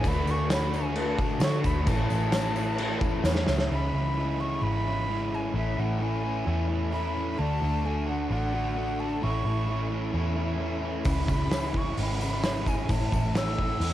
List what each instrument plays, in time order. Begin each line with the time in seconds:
0.04 picked electric bass D2, overdriven electric guitar D3 A3 D4, flute B5, kick, tambourine, crash
0.08 overdriven electric guitar F#4
0.26 picked electric bass D2, tambourine
0.31 flute C#6
0.48 overdriven electric guitar D3 A3 D4 F#4, snare, tambourine, crash
0.53 flute B5
0.72 overdriven electric guitar D3 A3 D4 F#4, tambourine
0.76 flute G#5
0.95 overdriven electric guitar D3 A3 D4 F#4, flute A5, crash
1.18 overdriven electric guitar A3 D4 F#4, kick, tambourine
1.39 overdriven electric guitar D3 A3 D4 F#4, picked electric bass D3, snare, tambourine, crash
1.44 flute C#6
1.64 picked electric bass D2, flute B5, kick, tambourine
1.86 picked electric bass A1, overdriven electric guitar A2 E3 A3 C#4, flute A5, kick, tambourine, crash
1.91 overdriven electric guitar E4
2.10 picked electric bass A1, tambourine
2.32 overdriven electric guitar E3 A3 C#4 E4, snare, tambourine, crash
2.55 overdriven electric guitar E3 A3 C#4 E4, tambourine
2.59 overdriven electric guitar A2
2.78 overdriven electric guitar A2 E3 A3 C#4 E4, tambourine, crash
3.01 overdriven electric guitar A3 C#4 E4, kick, tambourine
3.24 picked electric bass E2, overdriven electric guitar A2 E3 A3 C#4 E4, snare, tambourine
3.35 snare
3.47 picked electric bass C#2, snare, tambourine
3.59 snare
3.70 picked electric bass C#2, overdriven electric guitar C#3 E3 G#3 C#4 E4, flute B5
3.92 picked electric bass C#2, overdriven electric guitar G#3 C#4 E4
4.16 overdriven electric guitar C#3 E3 G#3 C#4 E4
4.39 overdriven electric guitar G#3 C#4 E4, flute C#6
4.62 picked electric bass G#1, overdriven electric guitar C#3 E3 G#3 C#4, flute B5
4.66 overdriven electric guitar E4
4.85 overdriven electric guitar C#3 E3 G#3 C#4 E4
5.08 overdriven electric guitar E3 G#3 C#4 E4
5.31 overdriven electric guitar G#3 C#4 E4, flute G#5
5.53 picked electric bass A1, overdriven electric guitar A2 E3 A3 C#4 E4, flute E5
5.76 picked electric bass A1, overdriven electric guitar A3 C#4 E4, flute F#5
5.99 overdriven electric guitar A2 E3 A3 C#4 E4
6.03 flute G#5
6.22 overdriven electric guitar A3 C#4 E4
6.44 picked electric bass E2, overdriven electric guitar A2 E3 A3 C#4
6.49 overdriven electric guitar E4
6.68 overdriven electric guitar A2 E3 A3 C#4 E4
6.91 overdriven electric guitar E3 A3 C#4 E4, flute B5
7.14 overdriven electric guitar C#4 E4
7.18 overdriven electric guitar A3
7.38 picked electric bass D2, overdriven electric guitar D3 A3 D4 F#4, flute A5
7.59 picked electric bass D2, overdriven electric guitar A3 D4 F#4
7.83 overdriven electric guitar D3 A3 D4 F#4, flute G#5
8.06 overdriven electric guitar A3 D4 F#4, flute F#5
8.29 picked electric bass A1, overdriven electric guitar D3 A3 D4 F#4, flute F#5
8.53 overdriven electric guitar D3 A3 D4 F#4
8.76 overdriven electric guitar D3 A3 D4 F#4
8.99 overdriven electric guitar A3 D4 F#4, flute A5
9.21 picked electric bass A1, overdriven electric guitar A2 E3 A3 C#4 E4, flute C#6
9.44 picked electric bass A1, overdriven electric guitar A3 C#4 E4
9.67 overdriven electric guitar A2 E3 A3 C#4 E4
9.90 overdriven electric guitar A3 C#4 E4
10.11 picked electric bass E2, overdriven electric guitar A2 E3 A3 C#4
10.16 overdriven electric guitar E4
10.36 overdriven electric guitar A2 E3 A3 C#4 E4
10.58 overdriven electric guitar E3 A3 C#4 E4
10.81 overdriven electric guitar A3 C#4 E4
11.04 picked electric bass C#2, overdriven electric guitar C#3 E3 G#3 C#4 E4, kick, open hi-hat, tambourine
11.09 flute B5
11.27 picked electric bass C#2, overdriven electric guitar G#3 C#4 E4, kick, tambourine
11.49 overdriven electric guitar C#3 E3 G#3 C#4, snare, open hi-hat, tambourine
11.53 overdriven electric guitar E4
11.73 overdriven electric guitar G#3 C#4 E4, kick
11.78 flute C#6
11.96 picked electric bass G#1, overdriven electric guitar C#3 E3 G#3 C#4 E4, open hi-hat, tambourine
12.01 flute B5
12.19 overdriven electric guitar C#3 E3 G#3 C#4 E4, tambourine
12.42 overdriven electric guitar E3 G#3 C#4 E4, snare, open hi-hat, tambourine
12.66 overdriven electric guitar G#3 C#4 E4, flute G#5, kick, tambourine
12.88 picked electric bass A1, overdriven electric guitar A2 E3 A3 C#4 E4, flute A5, kick, open hi-hat, tambourine
13.12 picked electric bass A1, overdriven electric guitar C#4 E4, kick, tambourine
13.17 overdriven electric guitar A3
13.35 overdriven electric guitar A2 E3 A3 C#4 E4, flute E6, snare, open hi-hat, tambourine
13.59 overdriven electric guitar A3 C#4 E4, kick
13.80 picked electric bass E2, overdriven electric guitar A2 E3 A3, open hi-hat, tambourine
13.84 overdriven electric guitar C#4 E4